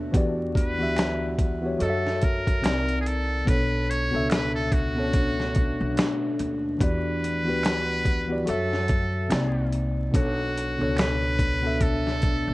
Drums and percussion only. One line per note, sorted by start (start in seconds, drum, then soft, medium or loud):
0.14 kick loud
0.14 closed hi-hat medium
0.55 kick medium
0.55 closed hi-hat medium
0.97 finger snap medium
0.97 snare loud
0.97 closed hi-hat medium
1.39 kick medium
1.39 closed hi-hat medium
1.80 closed hi-hat medium
2.07 snare soft
2.21 kick loud
2.21 closed hi-hat medium
2.47 kick medium
2.47 closed hi-hat soft
2.64 finger snap medium
2.64 snare loud
2.64 closed hi-hat medium
2.89 closed hi-hat soft
3.06 closed hi-hat medium
3.47 kick loud
3.47 closed hi-hat medium
3.91 closed hi-hat medium
4.30 finger snap medium
4.30 snare loud
4.30 closed hi-hat medium
4.72 kick medium
4.72 closed hi-hat medium
5.13 kick medium
5.13 closed hi-hat medium
5.40 snare soft
5.55 kick medium
5.55 closed hi-hat medium
5.97 finger snap medium
5.97 snare loud
5.97 closed hi-hat medium
6.39 closed hi-hat medium
6.80 kick loud
6.80 closed hi-hat medium
7.24 closed hi-hat medium
7.63 finger snap medium
7.63 snare loud
7.63 closed hi-hat medium
8.05 kick medium
8.05 closed hi-hat medium
8.47 closed hi-hat medium
8.73 snare soft
8.88 kick medium
8.88 closed hi-hat medium
9.30 finger snap medium
9.30 snare loud
9.30 closed hi-hat medium
9.73 closed hi-hat medium
10.14 kick loud
10.14 closed hi-hat medium
10.58 closed hi-hat medium
10.96 finger snap medium
10.96 snare loud
10.96 closed hi-hat medium
11.39 kick medium
11.39 closed hi-hat medium
11.81 kick medium
11.81 closed hi-hat medium
12.07 snare soft
12.22 kick loud
12.22 closed hi-hat medium